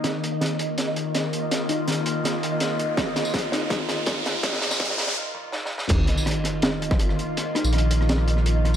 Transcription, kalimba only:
0.04 D#3
0.41 D#3
1.69 D#4
1.88 D#3
2.24 D#3
3.52 D#4
3.70 D#3
4.07 D#3
5.35 D#3
5.53 D#4
5.90 D#3
6.27 D#3
7.55 D#4
7.73 D#3
8.10 D#3

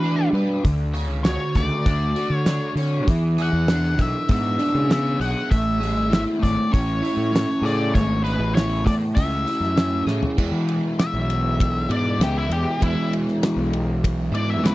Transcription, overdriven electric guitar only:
Already playing: B3 F#4
0.03 D4
0.34 B4
0.64 D3
0.94 C#5
1.25 F#4
1.55 A3
1.86 D4
2.16 F#4
2.47 D4
2.79 C#5
3.08 E3
3.38 G#4
3.69 D4
3.99 E3
4.29 B3
4.59 D4
4.89 B3
5.21 G#4
5.50 A3
5.80 G#4
6.10 E4
6.40 A3
6.71 C#4
7.02 E4
7.32 C#4
7.63 G#4
7.94 A3
8.24 G#4
8.55 E4
8.85 A3
9.16 C#4
9.46 E4
9.75 C#4
10.07 G#4
10.37 E3 G#3 B3 E4
11.89 E3 G#3 B3 E4
12.19 E3 G#3 B3 E4
12.80 E3 G#3 B3 E4
14.32 E3 G#3 B3 E4
14.62 E3 G#3 B3 E4

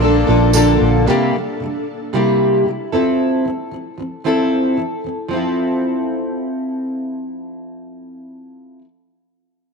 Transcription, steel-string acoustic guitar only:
0.00 F3 A#3 D4 A4
0.27 F3 A#3 D4 A4
0.53 A#2 D3 F3 A#3 D4 A4
1.06 C3 G3 A#3 E4 G4
1.34 C3 G3
1.60 C3 G3
2.13 C3 G3 A#3 E4 G4
2.66 C3 G3
2.92 F3 C4 E4 A4
3.45 F3 C4
3.71 F3 C4
3.98 F3 C4
4.24 F3 C4 E4 A4
4.77 F3 C4
5.04 F3 C4
5.29 F3 C4
5.33 E4 A4

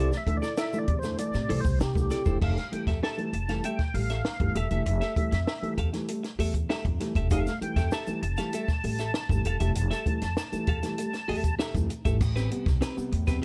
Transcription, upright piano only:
0.12 E3 A3
0.27 D3 E3 A3
0.73 D3 E3 A3
0.88 C3
1.03 D3 E3 A3
1.19 E3 A3
1.34 C3
1.49 E3 A3
1.95 D3 E3 A3
2.11 C3
2.26 D3 E3 A3
2.57 G3 A3
2.72 E3 G3 A3
3.17 E3 G3 A3
3.48 E3 G3 A3
3.64 G3 A3
3.94 G3 A3
4.40 E3 G3 A3
4.71 E3 G3 A3
5.01 G3 A3
5.17 E3 G3 A3
5.62 E3 G3 A3
5.93 E3 G3 A3
6.08 G3 A3
6.39 G3 A3
6.70 G3 A3
7.00 E3 G3 A3
7.46 G3 A3
7.61 E3 G3 A3
8.07 E3 G3 A3
8.38 E3 G3 A3
8.53 G3 A3
8.84 G3 A3
9.29 E3 G3 A3
9.60 E3 G3 A3
9.91 G3 A3
10.06 E3 G3 A3
10.52 E3 G3 A3
10.83 E3 G3 A3
10.98 G3 A3
11.29 G3 A3
11.75 E3 G3 A3
12.06 E3 G3 A3
12.21 A2
12.36 G3 B3
12.51 C3 G3 B3
12.97 C3 G3 B3
13.12 A2
13.27 C3 G3 B3

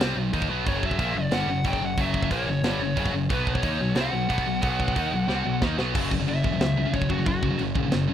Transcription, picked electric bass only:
0.00 C2
0.16 B1
0.33 D#2
0.48 B1
0.67 F#1
0.99 A#1
1.13 F#1
1.31 G1
1.46 F#1
1.65 F#1
1.79 F#1
1.97 F#1
2.31 A#1
2.47 F#1
2.62 G1
2.78 F#1
2.97 F#1
3.12 F#1
3.30 B1
3.63 D#2
3.80 B1
3.95 C2
4.12 B1
4.30 B1
4.46 B1
4.63 B1
4.96 D#2
5.12 B1
5.28 C2
5.45 B1
5.61 D#2
5.78 B1
5.95 F#1
6.12 F#1
6.27 F#1
6.44 E1
6.60 C#2
6.94 F#1
7.09 F#1
7.27 F#1
7.43 F#1
7.61 F#1
7.75 A#1
7.94 F#1

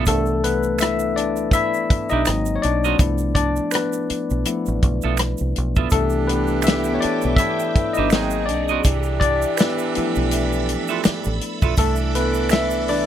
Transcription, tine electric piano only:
0.07 E3 A3 B3 D4 A4
0.44 B3 B4
0.80 E4 E5
1.16 D4 D5
1.53 E4 E5
2.10 D#4 D#5
2.26 F#3 A#3 C4
2.56 C#5
2.62 D4 D5
2.99 F3 A3 B3 E4
3.35 D4 D5
3.72 B3 B4
4.46 F3 A3 B3 E4
5.92 E3 A3 B3 D4 A4
6.27 B3 B4
6.64 E4 E5
6.95 C#5
7.00 D4 D5
7.36 E3 B3 D4 E4 E5
7.93 D#4 D#5
8.12 F#3 A#3 C4
8.46 D4 D5
9.20 D4 D5
9.57 B3 B4
9.95 F3 A3 B3 E4
11.78 A3 A4
12.15 B3 B4
12.51 E4 E5
12.89 E3 D4 B4 D5

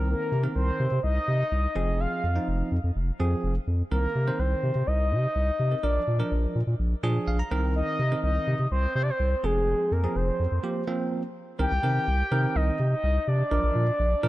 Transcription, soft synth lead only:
0.07 A#4
0.56 C5
1.03 D#5
2.00 F5
3.91 A#4
4.39 C5
4.87 D#5
5.83 D5
7.75 D#5
8.24 D#5
8.72 C5
8.96 C5
9.03 D5
9.10 C5
9.44 G#4
9.92 A#4
10.16 C5
11.60 G5
12.56 D#5
12.92 D#5
13.28 D5

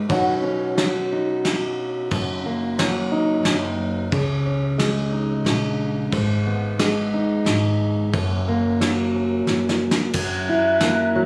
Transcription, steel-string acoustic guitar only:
Already playing: D#4
0.09 B2 F#3 C#4 D#4 F#4
0.43 C#4
0.78 F#3
1.13 D#4
2.12 F#2
2.46 A#3
2.79 F#3
3.12 D#4
4.12 C#3
4.46 C#4
4.78 G#3
5.13 D#4
6.12 G#2
6.47 B3
6.80 G#3
7.14 D#4
8.13 F#2
8.48 A#3
8.80 F#3
9.15 C#4
10.15 F#2
10.49 E4
10.83 A#3
11.15 F#3

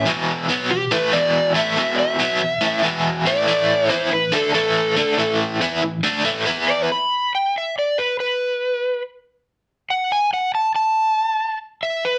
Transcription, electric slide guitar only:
0.71 G4
0.92 B4
1.13 D5
1.56 E5
1.99 E5
3.27 D5
3.90 C5
4.13 B4
4.34 A4
4.55 A4
6.68 D5
6.92 B5
7.35 G5
7.58 E5
7.79 D5
7.98 B4
8.20 B4
9.90 F#5
10.12 G#5
10.34 F#5
10.55 A5
10.76 A5
11.83 E5
12.05 B4

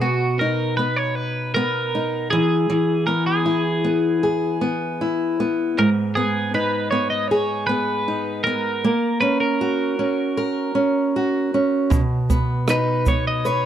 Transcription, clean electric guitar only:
0.01 F#4
0.39 A#4
0.77 B4
0.97 C#5
1.15 B4
1.55 A#4
2.30 G#4
3.07 A#4
3.26 G#4
5.79 A#4
6.15 G#4
6.55 B4
6.91 C#5
7.10 D#5
7.28 C#5
7.67 B4
8.44 A#4
9.21 B4
9.40 A#4
12.70 B4
13.08 C#5
13.27 D#5
13.46 C#5

